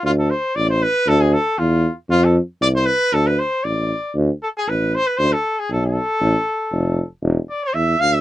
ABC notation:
X:1
M:2/4
L:1/16
Q:"Swing 16ths" 1/4=117
K:none
V:1 name="Trumpet"
F A c2 d c B2 | A ^G A2 F4 | F A z2 d c B2 | A B c2 d4 |
z2 A ^G B2 c B | c A2 ^G A A3- | A6- A z | z2 d c e2 f e |]
V:2 name="Tuba" clef=bass
D,,4 A,,,4 | D,,4 E,,4 | F,,4 C,,4 | D,,4 A,,,4 |
D,,2 z2 A,,,4 | D,,2 z2 B,,,4 | A,,,2 z2 F,,,4 | E,,,2 z2 E,,2 D,,2 |]